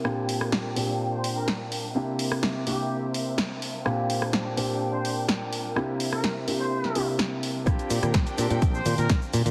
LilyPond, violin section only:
\new Staff \with { instrumentName = "Violin section" } { \time 4/4 \key bes \lydian \tempo 4 = 126 << { <d' g''>1 | <c' e''>1 | <d' g''>1 | <c' e''>1 |
<d' g''>1 | } \\ { bes'1~ | bes'1 | bes'1~ | bes'1 |
bes'1 | } >> }